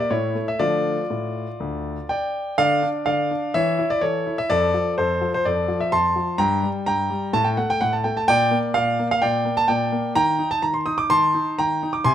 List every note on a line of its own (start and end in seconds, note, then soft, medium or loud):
0.00 0.11 A#3 medium
0.00 0.11 D5 medium
0.10 0.35 A2 medium
0.10 0.46 E4 medium
0.10 0.48 C#5 medium
0.35 0.59 A3 soft
0.48 0.61 E5 medium
0.59 0.95 D3 medium
0.59 1.00 F3 soft
0.59 1.00 A3 soft
0.59 2.06 F4 medium
0.59 2.09 D5 loud
1.10 1.46 A2 soft
1.60 1.95 D2 medium
2.09 2.56 D5 medium
2.09 2.55 G5 medium
2.58 2.82 D3 medium
2.58 3.04 D5 medium
2.58 2.87 F5 loud
2.83 3.06 D4 medium
3.06 3.30 D3 medium
3.06 3.51 D5 medium
3.06 3.54 F5 medium
3.31 3.54 D4 soft
3.54 3.78 E3 medium
3.54 3.88 C#5 medium
3.54 3.90 E5 loud
3.79 4.02 E4 medium
3.90 4.02 D5 medium
4.01 4.25 E3 soft
4.01 4.36 A4 medium
4.01 4.37 C#5 medium
4.27 4.49 E4 soft
4.38 4.50 E5 medium
4.50 4.73 F2 medium
4.50 4.94 A4 medium
4.50 4.93 D5 loud
4.74 4.97 F3 soft
4.98 5.21 F2 medium
4.98 5.31 A4 medium
4.98 5.29 C5 medium
5.21 5.44 F3 medium
5.34 5.45 C5 medium
5.45 5.68 F2 medium
5.45 5.79 A4 medium
5.45 5.81 D5 medium
5.68 5.91 F3 medium
5.80 5.92 E5 medium
5.92 6.15 F2 soft
5.92 6.37 A5 medium
5.92 6.40 C6 loud
6.16 6.39 F3 soft
6.38 6.62 G2 medium
6.38 6.84 G5 medium
6.38 6.67 A#5 loud
6.63 6.86 G3 soft
6.86 7.10 G2 soft
6.86 7.32 G5 medium
6.86 7.34 A#5 loud
7.10 7.34 G3 medium
7.33 7.57 A2 medium
7.33 7.46 A5 loud
7.44 7.57 G5 medium
7.57 7.81 A3 medium
7.57 7.70 F#5 medium
7.70 7.82 G5 medium
7.81 8.04 A2 medium
7.81 7.93 F#5 medium
7.93 8.05 A5 medium
8.04 8.28 A3 medium
8.04 8.16 G5 medium
8.17 8.29 A5 medium
8.28 8.51 A#2 medium
8.28 8.73 D5 medium
8.28 8.56 G5 loud
8.51 8.74 A#3 medium
8.74 8.98 A#2 medium
8.74 9.08 D5 medium
8.74 9.07 F5 loud
8.99 9.22 A#3 medium
9.11 9.23 F5 loud
9.22 9.45 A#2 medium
9.22 9.55 D5 medium
9.22 9.57 G5 medium
9.45 9.68 A#3 medium
9.57 9.69 A5 loud
9.68 9.92 A#2 medium
9.68 10.13 D5 medium
9.68 10.12 G5 medium
9.92 10.15 A#3 medium
10.15 10.39 D#3 medium
10.15 10.49 G5 medium
10.15 10.48 A#5 loud
10.39 10.62 D#4 medium
10.51 10.63 A5 loud
10.62 10.86 D#3 soft
10.62 10.75 A#5 medium
10.74 10.86 C6 medium
10.86 11.10 D#4 medium
10.86 10.98 D#6 medium
10.98 11.10 D6 medium
11.10 11.34 D#3 medium
11.10 11.55 A5 medium
11.10 11.58 C6 loud
11.34 11.58 D#4 medium
11.59 11.82 D#3 medium
11.59 11.92 G5 medium
11.59 11.94 A#5 loud
11.83 12.06 D#4 medium
11.93 12.05 D6 medium
12.04 12.14 C3 medium
12.04 12.14 G#5 medium
12.04 12.14 C6 loud